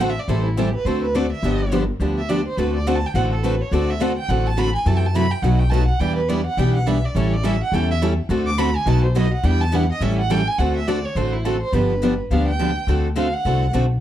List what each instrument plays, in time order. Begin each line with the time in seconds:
Already playing: upright bass A1
0.00 steel-string acoustic guitar D3 A3 C4 F#4 A4, violin F#5
0.10 violin E5
0.19 violin D5
0.28 upright bass A1, steel-string acoustic guitar E3 G3 C4 E4 A4, violin C5
0.45 violin E4
0.57 steel-string acoustic guitar E3 G3 C4 E4 A4, violin G4
0.75 violin B4
0.85 upright bass D2, steel-string acoustic guitar D3 A3 C4 F#4 A4, violin C5
1.03 violin B4
1.15 steel-string acoustic guitar D3 A3 C4 F#4 A4, violin D5
1.32 violin E5
1.43 upright bass G1, steel-string acoustic guitar D3 F3 B3 D4 G4
1.72 steel-string acoustic guitar D3 F3 B3 D4 G4
2.00 upright bass D2, steel-string acoustic guitar D3 F3 B3 D4 G4
2.18 violin E5
2.29 steel-string acoustic guitar D3 F3 B3 D4 G4, violin D5
2.48 violin C5
2.57 upright bass D2, steel-string acoustic guitar D3 A3 C4 F#4 A4, violin B4
2.76 violin D5
2.87 steel-string acoustic guitar D3 A3 C4 F#4 A4, violin F#5
2.96 violin A5
3.06 violin G5
3.14 upright bass A1, steel-string acoustic guitar D3 A3 C4 F#4 A4, violin F#5
3.33 violin A4
3.43 steel-string acoustic guitar D3 A3 C4 F#4 A4, violin B4
3.61 violin C#5
3.72 upright bass D2, steel-string acoustic guitar D3 A3 C4 F#4 A4, violin D5
3.90 violin E5
4.00 steel-string acoustic guitar D3 A3 C4 F#4 A4, violin F#5
4.18 violin G5
4.29 upright bass A1, steel-string acoustic guitar D3 A3 C4 F#4 A4, violin F#5
4.47 violin A5
4.57 steel-string acoustic guitar D3 A3 C4 F#4 A4, violin B5
4.75 violin G#5
4.86 upright bass F#2, steel-string acoustic guitar C3 E3 F#3 A3 C4 E4 F#4 A4, violin A5
4.97 violin G5
5.06 violin A5
5.14 steel-string acoustic guitar C3 E3 F#3 A3 C4 E4 F#4 A4, violin B5
5.31 violin G5
5.42 upright bass B1, steel-string acoustic guitar B2 F#3 A3 D#4 F#4 B4, violin F#5
5.59 violin G5
5.70 steel-string acoustic guitar B2 F#3 A3 D#4 F#4 B4, violin A5
5.88 violin F#5
6.00 upright bass E2, steel-string acoustic guitar E3 G3 B3 D4 E4 G4 B4, violin G5
6.16 violin B4
6.28 steel-string acoustic guitar E3 G3 B3 D4 E4 G4 B4, violin D5
6.46 violin F#5
6.57 upright bass B1, steel-string acoustic guitar E3 G3 B3 D4 E4 G4 B4, violin G5
6.75 violin F#5
6.86 steel-string acoustic guitar E3 G3 B3 D4 E4 G4 B4, violin E5
7.05 violin D5
7.15 upright bass A1, steel-string acoustic guitar E3 G3 C#4 E4 A4, violin C#5
7.33 violin D5
7.43 steel-string acoustic guitar E3 G3 C#4 E4 A4, violin E5
7.63 violin F#5
7.72 upright bass E2, steel-string acoustic guitar E3 G3 C#4 E4 A4, violin G5
7.91 violin E5
8.02 steel-string acoustic guitar E3 G3 C#4 E4 A4
8.29 upright bass D2, steel-string acoustic guitar D3 A3 C4 F#4 A4
8.47 violin D6
8.58 steel-string acoustic guitar D3 A3 C4 F#4 A4, violin B5
8.76 violin G#5
8.86 upright bass B1, steel-string acoustic guitar B2 F#3 A3 D#4 F#4 B4, violin A5
9.04 violin C5
9.16 steel-string acoustic guitar B2 F#3 A3 D#4 F#4 B4, violin D#5
9.34 violin F#5
9.44 upright bass E2, steel-string acoustic guitar E3 G3 B3 D4 E4 G4 B4, violin G5
9.61 violin A5
9.72 steel-string acoustic guitar E3 G3 B3 D4 E4 G4 B4, violin F#5
9.92 violin D#5
10.01 upright bass A1, steel-string acoustic guitar E3 G3 C#4 E4 A4, violin E5
10.19 violin F#5
10.30 steel-string acoustic guitar E3 G3 C#4 E4 A4, violin G5
10.48 violin G#5
10.58 upright bass D2, steel-string acoustic guitar D3 A3 C4 F#4 A4, violin F#5
10.76 violin E5
10.87 steel-string acoustic guitar D3 A3 C4 F#4 A4, violin D5
11.05 violin C#5
11.15 upright bass A1, steel-string acoustic guitar D3 A3 C4 F#4 A4, violin C5
11.33 violin E4
11.45 steel-string acoustic guitar D3 A3 C4 F#4 A4, violin A4
11.61 violin C5
11.72 upright bass G1, steel-string acoustic guitar D3 F3 B3 D4 G4, violin B4
12.03 steel-string acoustic guitar D3 F3 B3 D4 G4
12.31 upright bass D2, steel-string acoustic guitar D3 F3 B3 D4 G4, violin F5
12.48 violin G5
12.60 steel-string acoustic guitar D3 F3 B3 D4 G4
12.87 upright bass D2, steel-string acoustic guitar D3 A3 C4 F#4 A4
13.17 steel-string acoustic guitar D3 A3 C4 F#4 A4, violin F5
13.33 violin F#5
13.45 upright bass C2, steel-string acoustic guitar D3 A3 C4 F#4 A4
13.74 upright bass B1, steel-string acoustic guitar D3 A3 C4 F#4 A4